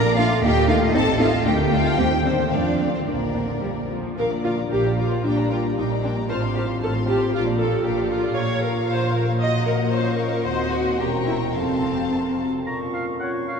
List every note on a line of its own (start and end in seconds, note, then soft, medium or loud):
0.00 0.37 A#1 medium
0.00 0.16 D4 medium
0.00 0.17 A#4 loud
0.00 0.40 D5 medium
0.00 0.17 A#5 medium
0.17 0.43 A3 medium
0.17 0.25 A#3 medium
0.17 0.25 D4 medium
0.17 0.42 F4 loud
0.17 0.43 F5 medium
0.42 0.88 D#2 medium
0.42 0.51 A#3 medium
0.42 0.69 A#3 medium
0.42 0.51 D#4 medium
0.42 0.68 G4 loud
0.42 1.44 D#5 medium
0.42 0.68 G5 medium
0.68 0.94 A3 medium
0.68 0.76 A#3 medium
0.68 0.76 D#4 medium
0.68 0.94 F4 loud
0.68 0.77 F5 medium
0.94 1.40 A1 medium
0.94 1.02 C4 medium
0.94 1.06 C4 medium
0.94 1.02 D#4 medium
0.94 1.20 A4 loud
0.94 1.20 A5 medium
1.19 1.32 A3 medium
1.19 1.27 C4 medium
1.19 1.27 D#4 medium
1.19 1.46 F4 medium
1.19 1.45 F5 medium
1.45 1.93 D2 medium
1.45 1.53 A3 medium
1.45 1.72 A#3 medium
1.45 1.54 D4 medium
1.45 1.72 G4 medium
1.45 2.50 G5 loud
1.45 1.54 G5 medium
1.72 1.80 A3 medium
1.72 1.98 A3 medium
1.72 1.80 D4 medium
1.72 1.99 F4 medium
1.72 1.98 F5 medium
1.98 2.46 D#2 medium
1.98 2.06 G3 medium
1.98 2.06 C4 medium
1.98 2.12 C4 medium
1.98 2.07 G4 medium
1.98 2.25 G5 medium
2.25 2.52 D#3 medium
2.25 2.33 G3 medium
2.25 2.33 C4 medium
2.25 2.33 C4 soft
2.25 2.52 C5 medium
2.51 3.01 F2 medium
2.51 2.94 F3 medium
2.51 2.60 A3 medium
2.51 2.61 C4 medium
2.51 2.93 D4 medium
2.51 2.93 D5 medium
2.51 3.07 F5 medium
2.80 2.88 A3 soft
2.80 2.88 C4 soft
2.94 3.07 D#3 medium
2.94 3.07 C4 medium
2.94 2.99 C5 medium
3.06 3.56 A#1 medium
3.06 3.91 D3 medium
3.06 3.90 A#3 medium
3.06 3.15 A#3 soft
3.06 3.15 D4 soft
3.06 3.89 A#4 medium
3.06 3.89 D5 medium
3.35 3.43 A#3 soft
3.35 3.43 D4 soft
3.61 4.12 A#1 medium
3.61 3.69 G3 medium
3.90 4.17 F3 soft
4.18 4.65 A#1 medium
4.18 4.65 A#2 medium
4.18 5.21 F3 medium
4.18 5.21 D4 medium
4.18 4.26 A#4 medium
4.18 4.31 A#4 soft
4.18 4.31 F5 soft
4.18 4.31 D6 soft
4.31 4.45 D5 soft
4.31 4.45 A#5 soft
4.45 4.53 F4 medium
4.45 4.58 A#4 soft
4.45 4.58 F5 soft
4.45 4.58 D6 soft
4.59 4.72 D5 soft
4.59 4.72 A#5 soft
4.71 5.18 A#1 medium
4.71 5.18 A#2 medium
4.71 4.97 G4 medium
4.71 4.84 A#4 soft
4.71 4.84 F5 soft
4.71 4.84 D6 soft
4.85 4.99 D5 soft
4.85 4.98 A#5 soft
4.98 5.24 F4 medium
4.98 5.11 A#4 soft
4.98 5.12 F5 soft
4.98 5.11 D6 soft
5.10 5.25 D5 soft
5.10 5.24 A#5 soft
5.24 5.71 A#1 medium
5.24 5.71 A#2 medium
5.24 6.30 G3 soft
5.24 5.77 D4 medium
5.24 5.51 D4 medium
5.24 5.37 A#4 soft
5.24 5.37 G5 soft
5.24 5.36 D6 soft
5.37 5.51 D5 soft
5.37 5.51 A#5 soft
5.50 5.60 F4 medium
5.50 5.64 A#4 soft
5.50 5.64 G5 soft
5.50 5.64 D6 soft
5.63 5.77 D5 soft
5.63 5.77 A#5 soft
5.76 6.23 A#1 medium
5.76 6.23 A#2 medium
5.76 6.29 D#4 medium
5.76 5.86 D#4 medium
5.76 5.90 A#4 soft
5.76 5.90 G5 soft
5.76 5.89 D6 soft
5.90 6.03 D5 soft
5.90 6.04 A#5 soft
6.04 6.12 D4 medium
6.04 6.17 A#4 soft
6.04 6.17 G5 soft
6.04 6.17 D6 soft
6.16 6.29 D5 soft
6.16 6.29 A#5 soft
6.16 6.30 A#5 soft
6.29 6.76 A1 medium
6.29 6.76 A2 medium
6.29 6.82 C4 soft
6.29 6.82 F4 soft
6.29 6.41 C5 soft
6.29 6.38 C5 medium
6.29 6.41 A5 soft
6.29 6.42 F6 soft
6.42 6.55 F5 soft
6.42 6.55 C6 soft
6.54 6.65 G4 medium
6.54 6.68 C5 soft
6.54 6.68 A5 soft
6.54 6.69 F6 soft
6.67 6.81 F5 soft
6.67 6.81 C6 soft
6.67 6.82 C6 soft
6.80 7.28 A1 medium
6.80 7.27 A2 medium
6.80 7.34 C4 medium
6.80 7.34 F4 medium
6.80 6.91 A4 medium
6.80 6.93 C5 soft
6.80 6.93 A5 soft
6.80 6.94 F6 soft
6.93 7.07 F5 soft
6.93 7.07 C6 soft
7.06 7.34 G4 medium
7.06 7.20 C5 soft
7.06 7.20 A5 soft
7.06 7.21 F6 soft
7.20 7.32 F5 soft
7.20 7.33 C6 soft
7.20 7.34 C6 soft
7.32 7.80 A#1 medium
7.32 7.79 A#2 medium
7.32 8.36 D4 medium
7.32 7.43 F4 medium
7.32 8.36 F4 medium
7.32 7.45 A#4 soft
7.32 7.45 F5 soft
7.32 7.47 D6 soft
7.46 7.59 D5 soft
7.46 7.60 A#5 soft
7.59 7.85 A4 medium
7.59 7.72 A#4 soft
7.59 7.72 F5 soft
7.59 7.74 D6 soft
7.73 7.86 D5 soft
7.73 7.86 A#5 soft
7.85 8.31 A#1 medium
7.85 8.31 A#2 medium
7.85 8.11 G4 medium
7.85 7.97 A#4 soft
7.85 7.97 F5 soft
7.85 7.97 D6 soft
7.98 8.11 D5 soft
7.98 8.11 A#5 soft
8.11 8.38 F4 medium
8.11 8.24 A#4 soft
8.11 8.24 F5 soft
8.11 8.24 D6 soft
8.24 8.37 D5 soft
8.24 8.35 A#5 soft
8.36 10.41 A#1 medium
8.36 10.41 A#2 medium
8.36 9.90 A#3 medium
8.36 9.38 F4 medium
8.36 8.63 C#5 medium
8.36 9.37 F5 medium
8.36 9.37 A#5 medium
8.64 8.72 A#4 medium
8.90 9.15 C5 medium
9.15 9.23 A#4 medium
9.41 9.94 F#4 medium
9.41 9.92 D#5 medium
9.41 9.67 D#5 medium
9.41 9.91 F#5 medium
9.41 9.92 A#5 medium
9.67 9.75 A#4 medium
9.92 10.46 C#4 medium
9.92 10.45 F4 medium
9.92 10.18 C5 medium
9.92 10.45 C#5 medium
9.92 10.45 F5 medium
9.92 10.45 C#6 medium
10.19 10.44 A#4 medium
10.44 10.98 D#2 medium
10.44 10.96 C4 medium
10.44 10.96 F#4 medium
10.44 10.72 C5 medium
10.44 10.99 D#5 medium
10.44 10.99 F#5 medium
10.44 10.99 C6 medium
10.72 10.99 F#4 medium
10.99 11.54 E1 soft
10.99 11.54 E2 soft
10.99 11.38 C#4 medium
10.99 11.07 G4 medium
10.99 11.38 A#4 soft
10.99 11.55 G5 soft
10.99 11.55 A#5 soft
10.99 11.55 C#6 soft
11.27 11.35 E4 medium
11.54 12.46 F1 soft
11.54 12.46 F2 soft
11.54 12.38 C4 medium
11.54 12.40 C4 soft
11.54 12.38 A4 soft
11.54 12.46 F5 soft
11.54 12.46 A5 soft
11.54 12.45 C6 soft
12.66 13.60 A#2 soft
12.66 13.60 C#4 soft
12.66 13.60 F4 soft
12.66 12.78 A#5 medium
12.66 13.16 C#6 soft
12.94 13.06 F5 medium
13.20 13.60 C#5 soft
13.20 13.32 F#5 medium
13.20 13.60 C#6 soft
13.47 13.60 F5 medium